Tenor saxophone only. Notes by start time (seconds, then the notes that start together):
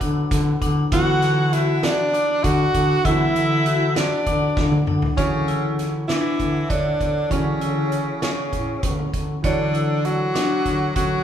0.93 F#4
1.53 E4
1.84 D4
2.44 F#4
3.05 E4
3.96 D4
5.17 C#4
6.08 E4
6.70 D4
7.32 C#4
8.23 C#4
9.45 D4
10.05 F#4
10.96 F#4